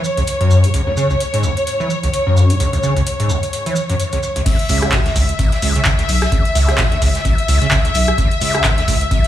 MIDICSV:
0, 0, Header, 1, 5, 480
1, 0, Start_track
1, 0, Tempo, 465116
1, 764, Time_signature, 4, 2, 24, 8
1, 9574, End_track
2, 0, Start_track
2, 0, Title_t, "String section"
2, 0, Program_c, 0, 48
2, 0, Note_on_c, 0, 73, 77
2, 4604, Note_on_c, 0, 76, 84
2, 4615, Note_off_c, 0, 73, 0
2, 9574, Note_off_c, 0, 76, 0
2, 9574, End_track
3, 0, Start_track
3, 0, Title_t, "Acid bass"
3, 0, Program_c, 1, 38
3, 179, Note_on_c, 1, 37, 95
3, 237, Note_off_c, 1, 37, 0
3, 419, Note_on_c, 1, 42, 105
3, 659, Note_on_c, 1, 44, 102
3, 674, Note_off_c, 1, 42, 0
3, 717, Note_off_c, 1, 44, 0
3, 763, Note_on_c, 1, 37, 95
3, 838, Note_off_c, 1, 37, 0
3, 899, Note_on_c, 1, 38, 75
3, 957, Note_off_c, 1, 38, 0
3, 1003, Note_on_c, 1, 49, 72
3, 1116, Note_off_c, 1, 49, 0
3, 1140, Note_on_c, 1, 37, 97
3, 1197, Note_off_c, 1, 37, 0
3, 1379, Note_on_c, 1, 44, 73
3, 1483, Note_on_c, 1, 37, 75
3, 1499, Note_off_c, 1, 44, 0
3, 1558, Note_off_c, 1, 37, 0
3, 1859, Note_on_c, 1, 52, 73
3, 1946, Note_off_c, 1, 52, 0
3, 2100, Note_on_c, 1, 37, 99
3, 2157, Note_off_c, 1, 37, 0
3, 2339, Note_on_c, 1, 42, 100
3, 2579, Note_on_c, 1, 44, 99
3, 2595, Note_off_c, 1, 42, 0
3, 2637, Note_off_c, 1, 44, 0
3, 2684, Note_on_c, 1, 37, 101
3, 2759, Note_off_c, 1, 37, 0
3, 2820, Note_on_c, 1, 38, 75
3, 2877, Note_off_c, 1, 38, 0
3, 2924, Note_on_c, 1, 49, 72
3, 3036, Note_off_c, 1, 49, 0
3, 3060, Note_on_c, 1, 37, 98
3, 3117, Note_off_c, 1, 37, 0
3, 3301, Note_on_c, 1, 44, 74
3, 3404, Note_on_c, 1, 37, 74
3, 3420, Note_off_c, 1, 44, 0
3, 3479, Note_off_c, 1, 37, 0
3, 3780, Note_on_c, 1, 52, 76
3, 3866, Note_off_c, 1, 52, 0
3, 4020, Note_on_c, 1, 42, 74
3, 4077, Note_off_c, 1, 42, 0
3, 4261, Note_on_c, 1, 37, 79
3, 4317, Note_off_c, 1, 37, 0
3, 4500, Note_on_c, 1, 37, 75
3, 4557, Note_off_c, 1, 37, 0
3, 4605, Note_on_c, 1, 37, 81
3, 4717, Note_off_c, 1, 37, 0
3, 4845, Note_on_c, 1, 37, 102
3, 5084, Note_on_c, 1, 49, 83
3, 5100, Note_off_c, 1, 37, 0
3, 5159, Note_off_c, 1, 49, 0
3, 5220, Note_on_c, 1, 38, 80
3, 5277, Note_off_c, 1, 38, 0
3, 5325, Note_on_c, 1, 37, 101
3, 5399, Note_off_c, 1, 37, 0
3, 5565, Note_on_c, 1, 35, 83
3, 5677, Note_off_c, 1, 35, 0
3, 5805, Note_on_c, 1, 37, 78
3, 5917, Note_off_c, 1, 37, 0
3, 5941, Note_on_c, 1, 49, 78
3, 5998, Note_off_c, 1, 49, 0
3, 6044, Note_on_c, 1, 37, 105
3, 6089, Note_off_c, 1, 37, 0
3, 6180, Note_on_c, 1, 38, 81
3, 6237, Note_off_c, 1, 38, 0
3, 6524, Note_on_c, 1, 37, 82
3, 6636, Note_off_c, 1, 37, 0
3, 6763, Note_on_c, 1, 37, 103
3, 7003, Note_on_c, 1, 49, 83
3, 7018, Note_off_c, 1, 37, 0
3, 7078, Note_off_c, 1, 49, 0
3, 7139, Note_on_c, 1, 38, 78
3, 7197, Note_off_c, 1, 38, 0
3, 7243, Note_on_c, 1, 37, 104
3, 7318, Note_off_c, 1, 37, 0
3, 7484, Note_on_c, 1, 35, 83
3, 7596, Note_off_c, 1, 35, 0
3, 7725, Note_on_c, 1, 37, 74
3, 7836, Note_off_c, 1, 37, 0
3, 7861, Note_on_c, 1, 49, 77
3, 7918, Note_off_c, 1, 49, 0
3, 7964, Note_on_c, 1, 37, 104
3, 8009, Note_off_c, 1, 37, 0
3, 8101, Note_on_c, 1, 38, 80
3, 8158, Note_off_c, 1, 38, 0
3, 8444, Note_on_c, 1, 37, 84
3, 8556, Note_off_c, 1, 37, 0
3, 8684, Note_on_c, 1, 37, 102
3, 8923, Note_on_c, 1, 49, 82
3, 8939, Note_off_c, 1, 37, 0
3, 8999, Note_off_c, 1, 49, 0
3, 9059, Note_on_c, 1, 38, 77
3, 9117, Note_off_c, 1, 38, 0
3, 9163, Note_on_c, 1, 37, 105
3, 9238, Note_off_c, 1, 37, 0
3, 9403, Note_on_c, 1, 35, 81
3, 9516, Note_off_c, 1, 35, 0
3, 9574, End_track
4, 0, Start_track
4, 0, Title_t, "Analog synth bass"
4, 0, Program_c, 2, 38
4, 4844, Note_on_c, 2, 37, 101
4, 5027, Note_off_c, 2, 37, 0
4, 5324, Note_on_c, 2, 37, 102
4, 5507, Note_off_c, 2, 37, 0
4, 5804, Note_on_c, 2, 37, 101
4, 5987, Note_off_c, 2, 37, 0
4, 6284, Note_on_c, 2, 35, 94
4, 6467, Note_off_c, 2, 35, 0
4, 6763, Note_on_c, 2, 37, 101
4, 6947, Note_off_c, 2, 37, 0
4, 7244, Note_on_c, 2, 37, 100
4, 7427, Note_off_c, 2, 37, 0
4, 7723, Note_on_c, 2, 37, 102
4, 7907, Note_off_c, 2, 37, 0
4, 8204, Note_on_c, 2, 35, 95
4, 8387, Note_off_c, 2, 35, 0
4, 8683, Note_on_c, 2, 37, 101
4, 8867, Note_off_c, 2, 37, 0
4, 9164, Note_on_c, 2, 37, 99
4, 9347, Note_off_c, 2, 37, 0
4, 9574, End_track
5, 0, Start_track
5, 0, Title_t, "Drums"
5, 43, Note_on_c, 9, 70, 76
5, 146, Note_off_c, 9, 70, 0
5, 180, Note_on_c, 9, 42, 34
5, 182, Note_on_c, 9, 70, 35
5, 280, Note_off_c, 9, 70, 0
5, 280, Note_on_c, 9, 70, 45
5, 283, Note_off_c, 9, 42, 0
5, 284, Note_on_c, 9, 42, 72
5, 383, Note_off_c, 9, 70, 0
5, 387, Note_off_c, 9, 42, 0
5, 420, Note_on_c, 9, 42, 35
5, 522, Note_on_c, 9, 70, 79
5, 523, Note_off_c, 9, 42, 0
5, 625, Note_off_c, 9, 70, 0
5, 657, Note_on_c, 9, 70, 33
5, 659, Note_on_c, 9, 42, 48
5, 760, Note_off_c, 9, 70, 0
5, 762, Note_off_c, 9, 42, 0
5, 763, Note_on_c, 9, 42, 76
5, 771, Note_on_c, 9, 70, 43
5, 866, Note_off_c, 9, 42, 0
5, 874, Note_off_c, 9, 70, 0
5, 1002, Note_on_c, 9, 70, 76
5, 1105, Note_off_c, 9, 70, 0
5, 1137, Note_on_c, 9, 70, 38
5, 1240, Note_off_c, 9, 70, 0
5, 1243, Note_on_c, 9, 42, 78
5, 1248, Note_on_c, 9, 70, 46
5, 1347, Note_off_c, 9, 42, 0
5, 1352, Note_off_c, 9, 70, 0
5, 1380, Note_on_c, 9, 42, 50
5, 1380, Note_on_c, 9, 70, 32
5, 1479, Note_off_c, 9, 70, 0
5, 1479, Note_on_c, 9, 70, 81
5, 1483, Note_off_c, 9, 42, 0
5, 1582, Note_off_c, 9, 70, 0
5, 1620, Note_on_c, 9, 42, 36
5, 1622, Note_on_c, 9, 70, 34
5, 1723, Note_off_c, 9, 42, 0
5, 1724, Note_on_c, 9, 42, 76
5, 1725, Note_off_c, 9, 70, 0
5, 1726, Note_on_c, 9, 70, 47
5, 1827, Note_off_c, 9, 42, 0
5, 1829, Note_off_c, 9, 70, 0
5, 1860, Note_on_c, 9, 70, 32
5, 1963, Note_off_c, 9, 70, 0
5, 1963, Note_on_c, 9, 70, 81
5, 2066, Note_off_c, 9, 70, 0
5, 2099, Note_on_c, 9, 70, 37
5, 2100, Note_on_c, 9, 42, 35
5, 2202, Note_off_c, 9, 70, 0
5, 2203, Note_off_c, 9, 42, 0
5, 2204, Note_on_c, 9, 42, 75
5, 2204, Note_on_c, 9, 70, 43
5, 2307, Note_off_c, 9, 42, 0
5, 2307, Note_off_c, 9, 70, 0
5, 2444, Note_on_c, 9, 70, 86
5, 2548, Note_off_c, 9, 70, 0
5, 2580, Note_on_c, 9, 42, 51
5, 2581, Note_on_c, 9, 70, 35
5, 2684, Note_off_c, 9, 42, 0
5, 2684, Note_off_c, 9, 70, 0
5, 2684, Note_on_c, 9, 42, 79
5, 2687, Note_on_c, 9, 70, 52
5, 2787, Note_off_c, 9, 42, 0
5, 2790, Note_off_c, 9, 70, 0
5, 2820, Note_on_c, 9, 42, 36
5, 2829, Note_on_c, 9, 70, 35
5, 2922, Note_off_c, 9, 70, 0
5, 2922, Note_on_c, 9, 70, 79
5, 2923, Note_off_c, 9, 42, 0
5, 3025, Note_off_c, 9, 70, 0
5, 3059, Note_on_c, 9, 70, 39
5, 3061, Note_on_c, 9, 42, 36
5, 3162, Note_off_c, 9, 70, 0
5, 3164, Note_off_c, 9, 42, 0
5, 3164, Note_on_c, 9, 42, 82
5, 3164, Note_on_c, 9, 70, 44
5, 3267, Note_off_c, 9, 42, 0
5, 3267, Note_off_c, 9, 70, 0
5, 3298, Note_on_c, 9, 70, 34
5, 3300, Note_on_c, 9, 42, 53
5, 3399, Note_off_c, 9, 70, 0
5, 3399, Note_on_c, 9, 70, 81
5, 3403, Note_off_c, 9, 42, 0
5, 3502, Note_off_c, 9, 70, 0
5, 3540, Note_on_c, 9, 42, 37
5, 3546, Note_on_c, 9, 70, 38
5, 3643, Note_off_c, 9, 42, 0
5, 3644, Note_on_c, 9, 42, 78
5, 3648, Note_off_c, 9, 70, 0
5, 3648, Note_on_c, 9, 70, 47
5, 3747, Note_off_c, 9, 42, 0
5, 3751, Note_off_c, 9, 70, 0
5, 3780, Note_on_c, 9, 42, 38
5, 3780, Note_on_c, 9, 70, 36
5, 3877, Note_off_c, 9, 70, 0
5, 3877, Note_on_c, 9, 70, 88
5, 3883, Note_off_c, 9, 42, 0
5, 3980, Note_off_c, 9, 70, 0
5, 4019, Note_on_c, 9, 70, 35
5, 4020, Note_on_c, 9, 42, 37
5, 4122, Note_off_c, 9, 70, 0
5, 4123, Note_off_c, 9, 42, 0
5, 4124, Note_on_c, 9, 42, 78
5, 4129, Note_on_c, 9, 70, 47
5, 4227, Note_off_c, 9, 42, 0
5, 4233, Note_off_c, 9, 70, 0
5, 4255, Note_on_c, 9, 70, 33
5, 4259, Note_on_c, 9, 42, 37
5, 4358, Note_off_c, 9, 70, 0
5, 4363, Note_off_c, 9, 42, 0
5, 4364, Note_on_c, 9, 70, 78
5, 4467, Note_off_c, 9, 70, 0
5, 4498, Note_on_c, 9, 70, 33
5, 4499, Note_on_c, 9, 42, 51
5, 4601, Note_off_c, 9, 70, 0
5, 4602, Note_off_c, 9, 42, 0
5, 4603, Note_on_c, 9, 42, 69
5, 4603, Note_on_c, 9, 49, 104
5, 4604, Note_on_c, 9, 36, 124
5, 4604, Note_on_c, 9, 54, 94
5, 4607, Note_on_c, 9, 70, 52
5, 4706, Note_off_c, 9, 42, 0
5, 4706, Note_off_c, 9, 49, 0
5, 4707, Note_off_c, 9, 36, 0
5, 4707, Note_off_c, 9, 54, 0
5, 4710, Note_off_c, 9, 70, 0
5, 4739, Note_on_c, 9, 42, 41
5, 4838, Note_on_c, 9, 70, 96
5, 4842, Note_off_c, 9, 42, 0
5, 4843, Note_on_c, 9, 46, 106
5, 4848, Note_on_c, 9, 54, 61
5, 4941, Note_off_c, 9, 70, 0
5, 4946, Note_off_c, 9, 46, 0
5, 4951, Note_off_c, 9, 54, 0
5, 4977, Note_on_c, 9, 70, 42
5, 4979, Note_on_c, 9, 37, 79
5, 4979, Note_on_c, 9, 42, 42
5, 5079, Note_on_c, 9, 38, 118
5, 5079, Note_on_c, 9, 39, 123
5, 5081, Note_off_c, 9, 70, 0
5, 5082, Note_off_c, 9, 37, 0
5, 5082, Note_off_c, 9, 42, 0
5, 5082, Note_on_c, 9, 70, 48
5, 5084, Note_on_c, 9, 36, 118
5, 5084, Note_on_c, 9, 42, 70
5, 5088, Note_on_c, 9, 54, 90
5, 5182, Note_off_c, 9, 38, 0
5, 5182, Note_off_c, 9, 39, 0
5, 5186, Note_off_c, 9, 70, 0
5, 5187, Note_off_c, 9, 36, 0
5, 5187, Note_off_c, 9, 42, 0
5, 5191, Note_off_c, 9, 54, 0
5, 5219, Note_on_c, 9, 42, 41
5, 5229, Note_on_c, 9, 38, 55
5, 5322, Note_off_c, 9, 42, 0
5, 5322, Note_on_c, 9, 54, 63
5, 5323, Note_on_c, 9, 46, 110
5, 5323, Note_on_c, 9, 70, 93
5, 5324, Note_on_c, 9, 36, 63
5, 5332, Note_off_c, 9, 38, 0
5, 5425, Note_off_c, 9, 54, 0
5, 5426, Note_off_c, 9, 46, 0
5, 5426, Note_off_c, 9, 70, 0
5, 5427, Note_off_c, 9, 36, 0
5, 5459, Note_on_c, 9, 42, 42
5, 5464, Note_on_c, 9, 70, 42
5, 5560, Note_off_c, 9, 70, 0
5, 5560, Note_on_c, 9, 70, 49
5, 5562, Note_off_c, 9, 42, 0
5, 5563, Note_on_c, 9, 42, 68
5, 5563, Note_on_c, 9, 54, 90
5, 5564, Note_on_c, 9, 36, 118
5, 5664, Note_off_c, 9, 70, 0
5, 5666, Note_off_c, 9, 42, 0
5, 5666, Note_off_c, 9, 54, 0
5, 5667, Note_off_c, 9, 36, 0
5, 5695, Note_on_c, 9, 38, 51
5, 5699, Note_on_c, 9, 42, 40
5, 5798, Note_off_c, 9, 38, 0
5, 5801, Note_on_c, 9, 70, 89
5, 5803, Note_off_c, 9, 42, 0
5, 5803, Note_on_c, 9, 46, 108
5, 5807, Note_on_c, 9, 54, 69
5, 5904, Note_off_c, 9, 70, 0
5, 5906, Note_off_c, 9, 46, 0
5, 5911, Note_off_c, 9, 54, 0
5, 5939, Note_on_c, 9, 42, 41
5, 5943, Note_on_c, 9, 70, 39
5, 6038, Note_on_c, 9, 39, 124
5, 6042, Note_off_c, 9, 42, 0
5, 6042, Note_off_c, 9, 70, 0
5, 6042, Note_on_c, 9, 70, 55
5, 6043, Note_on_c, 9, 42, 71
5, 6043, Note_on_c, 9, 54, 78
5, 6044, Note_on_c, 9, 36, 119
5, 6048, Note_on_c, 9, 38, 124
5, 6141, Note_off_c, 9, 39, 0
5, 6145, Note_off_c, 9, 70, 0
5, 6146, Note_off_c, 9, 42, 0
5, 6147, Note_off_c, 9, 36, 0
5, 6147, Note_off_c, 9, 54, 0
5, 6152, Note_off_c, 9, 38, 0
5, 6180, Note_on_c, 9, 42, 43
5, 6183, Note_on_c, 9, 70, 37
5, 6184, Note_on_c, 9, 38, 50
5, 6283, Note_off_c, 9, 42, 0
5, 6283, Note_off_c, 9, 70, 0
5, 6283, Note_on_c, 9, 46, 83
5, 6283, Note_on_c, 9, 70, 94
5, 6284, Note_off_c, 9, 46, 0
5, 6284, Note_on_c, 9, 46, 103
5, 6288, Note_off_c, 9, 38, 0
5, 6386, Note_off_c, 9, 70, 0
5, 6387, Note_off_c, 9, 46, 0
5, 6415, Note_on_c, 9, 38, 50
5, 6420, Note_on_c, 9, 37, 76
5, 6420, Note_on_c, 9, 42, 42
5, 6431, Note_on_c, 9, 70, 40
5, 6518, Note_off_c, 9, 38, 0
5, 6523, Note_off_c, 9, 37, 0
5, 6523, Note_off_c, 9, 42, 0
5, 6523, Note_on_c, 9, 42, 67
5, 6524, Note_on_c, 9, 36, 125
5, 6526, Note_on_c, 9, 54, 93
5, 6527, Note_off_c, 9, 70, 0
5, 6527, Note_on_c, 9, 70, 51
5, 6626, Note_off_c, 9, 42, 0
5, 6627, Note_off_c, 9, 36, 0
5, 6629, Note_off_c, 9, 54, 0
5, 6631, Note_off_c, 9, 70, 0
5, 6660, Note_on_c, 9, 42, 41
5, 6763, Note_off_c, 9, 42, 0
5, 6763, Note_on_c, 9, 46, 107
5, 6764, Note_on_c, 9, 54, 69
5, 6774, Note_on_c, 9, 70, 103
5, 6867, Note_off_c, 9, 46, 0
5, 6867, Note_off_c, 9, 54, 0
5, 6877, Note_off_c, 9, 70, 0
5, 6899, Note_on_c, 9, 37, 80
5, 6899, Note_on_c, 9, 42, 42
5, 6902, Note_on_c, 9, 38, 48
5, 6909, Note_on_c, 9, 70, 39
5, 6997, Note_on_c, 9, 54, 95
5, 6998, Note_on_c, 9, 39, 126
5, 7001, Note_off_c, 9, 38, 0
5, 7001, Note_off_c, 9, 70, 0
5, 7001, Note_on_c, 9, 38, 113
5, 7001, Note_on_c, 9, 70, 53
5, 7003, Note_off_c, 9, 37, 0
5, 7003, Note_off_c, 9, 42, 0
5, 7003, Note_on_c, 9, 42, 67
5, 7004, Note_on_c, 9, 36, 120
5, 7100, Note_off_c, 9, 54, 0
5, 7101, Note_off_c, 9, 39, 0
5, 7104, Note_off_c, 9, 38, 0
5, 7104, Note_off_c, 9, 70, 0
5, 7106, Note_off_c, 9, 42, 0
5, 7107, Note_off_c, 9, 36, 0
5, 7140, Note_on_c, 9, 42, 40
5, 7240, Note_on_c, 9, 38, 39
5, 7243, Note_off_c, 9, 42, 0
5, 7243, Note_on_c, 9, 46, 114
5, 7244, Note_on_c, 9, 36, 66
5, 7246, Note_on_c, 9, 70, 106
5, 7248, Note_on_c, 9, 54, 66
5, 7344, Note_off_c, 9, 38, 0
5, 7347, Note_off_c, 9, 36, 0
5, 7347, Note_off_c, 9, 46, 0
5, 7349, Note_off_c, 9, 70, 0
5, 7352, Note_off_c, 9, 54, 0
5, 7377, Note_on_c, 9, 70, 43
5, 7379, Note_on_c, 9, 42, 41
5, 7386, Note_on_c, 9, 38, 53
5, 7480, Note_off_c, 9, 70, 0
5, 7483, Note_off_c, 9, 42, 0
5, 7483, Note_on_c, 9, 42, 65
5, 7484, Note_on_c, 9, 36, 119
5, 7484, Note_on_c, 9, 70, 53
5, 7489, Note_off_c, 9, 38, 0
5, 7489, Note_on_c, 9, 54, 90
5, 7586, Note_off_c, 9, 42, 0
5, 7587, Note_off_c, 9, 36, 0
5, 7587, Note_off_c, 9, 70, 0
5, 7592, Note_off_c, 9, 54, 0
5, 7620, Note_on_c, 9, 42, 40
5, 7723, Note_off_c, 9, 42, 0
5, 7723, Note_on_c, 9, 46, 108
5, 7724, Note_on_c, 9, 54, 69
5, 7729, Note_on_c, 9, 70, 94
5, 7826, Note_off_c, 9, 46, 0
5, 7827, Note_off_c, 9, 54, 0
5, 7832, Note_off_c, 9, 70, 0
5, 7857, Note_on_c, 9, 70, 43
5, 7860, Note_on_c, 9, 42, 40
5, 7958, Note_on_c, 9, 39, 126
5, 7960, Note_off_c, 9, 70, 0
5, 7963, Note_off_c, 9, 42, 0
5, 7963, Note_on_c, 9, 70, 52
5, 7964, Note_on_c, 9, 36, 126
5, 7964, Note_on_c, 9, 42, 69
5, 7964, Note_on_c, 9, 54, 83
5, 7967, Note_on_c, 9, 38, 119
5, 8062, Note_off_c, 9, 39, 0
5, 8066, Note_off_c, 9, 70, 0
5, 8067, Note_off_c, 9, 36, 0
5, 8067, Note_off_c, 9, 42, 0
5, 8068, Note_off_c, 9, 54, 0
5, 8070, Note_off_c, 9, 38, 0
5, 8098, Note_on_c, 9, 70, 37
5, 8100, Note_on_c, 9, 42, 40
5, 8200, Note_off_c, 9, 70, 0
5, 8200, Note_on_c, 9, 70, 94
5, 8204, Note_off_c, 9, 42, 0
5, 8204, Note_on_c, 9, 46, 108
5, 8205, Note_on_c, 9, 54, 73
5, 8303, Note_off_c, 9, 70, 0
5, 8307, Note_off_c, 9, 46, 0
5, 8308, Note_off_c, 9, 54, 0
5, 8335, Note_on_c, 9, 70, 44
5, 8340, Note_on_c, 9, 37, 72
5, 8340, Note_on_c, 9, 42, 40
5, 8438, Note_off_c, 9, 70, 0
5, 8444, Note_off_c, 9, 37, 0
5, 8444, Note_off_c, 9, 42, 0
5, 8444, Note_on_c, 9, 36, 127
5, 8444, Note_on_c, 9, 42, 64
5, 8446, Note_on_c, 9, 54, 85
5, 8450, Note_on_c, 9, 70, 54
5, 8547, Note_off_c, 9, 36, 0
5, 8547, Note_off_c, 9, 42, 0
5, 8549, Note_off_c, 9, 54, 0
5, 8553, Note_off_c, 9, 70, 0
5, 8580, Note_on_c, 9, 42, 40
5, 8678, Note_on_c, 9, 70, 88
5, 8683, Note_off_c, 9, 42, 0
5, 8684, Note_on_c, 9, 46, 108
5, 8684, Note_on_c, 9, 54, 64
5, 8781, Note_off_c, 9, 70, 0
5, 8787, Note_off_c, 9, 46, 0
5, 8787, Note_off_c, 9, 54, 0
5, 8820, Note_on_c, 9, 70, 42
5, 8821, Note_on_c, 9, 37, 82
5, 8919, Note_on_c, 9, 39, 121
5, 8922, Note_on_c, 9, 38, 110
5, 8923, Note_off_c, 9, 70, 0
5, 8923, Note_on_c, 9, 70, 58
5, 8924, Note_off_c, 9, 37, 0
5, 8924, Note_on_c, 9, 36, 124
5, 8924, Note_on_c, 9, 42, 66
5, 8927, Note_on_c, 9, 54, 88
5, 9022, Note_off_c, 9, 39, 0
5, 9025, Note_off_c, 9, 38, 0
5, 9026, Note_off_c, 9, 70, 0
5, 9027, Note_off_c, 9, 36, 0
5, 9027, Note_off_c, 9, 42, 0
5, 9030, Note_off_c, 9, 54, 0
5, 9058, Note_on_c, 9, 38, 56
5, 9060, Note_on_c, 9, 42, 40
5, 9162, Note_off_c, 9, 38, 0
5, 9163, Note_off_c, 9, 42, 0
5, 9164, Note_on_c, 9, 36, 68
5, 9164, Note_on_c, 9, 46, 114
5, 9166, Note_on_c, 9, 54, 73
5, 9169, Note_on_c, 9, 70, 94
5, 9267, Note_off_c, 9, 36, 0
5, 9267, Note_off_c, 9, 46, 0
5, 9269, Note_off_c, 9, 54, 0
5, 9273, Note_off_c, 9, 70, 0
5, 9298, Note_on_c, 9, 70, 40
5, 9300, Note_on_c, 9, 42, 39
5, 9401, Note_off_c, 9, 70, 0
5, 9403, Note_off_c, 9, 42, 0
5, 9403, Note_on_c, 9, 70, 58
5, 9404, Note_on_c, 9, 36, 123
5, 9404, Note_on_c, 9, 42, 62
5, 9404, Note_on_c, 9, 54, 87
5, 9507, Note_off_c, 9, 36, 0
5, 9507, Note_off_c, 9, 42, 0
5, 9507, Note_off_c, 9, 54, 0
5, 9507, Note_off_c, 9, 70, 0
5, 9539, Note_on_c, 9, 38, 50
5, 9540, Note_on_c, 9, 42, 38
5, 9574, Note_off_c, 9, 38, 0
5, 9574, Note_off_c, 9, 42, 0
5, 9574, End_track
0, 0, End_of_file